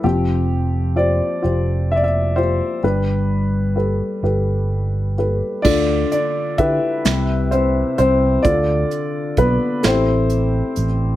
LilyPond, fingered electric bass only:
\new Staff \with { instrumentName = "Fingered electric bass" } { \clef bass \time 6/8 \key d \dorian \tempo 4. = 43 f,,4. f,,4. | g,,4. g,,4. | d,8 r8 d16 r16 c,4 c,8 | d,8 r8 b,,16 r16 a,,4 a,,8 | }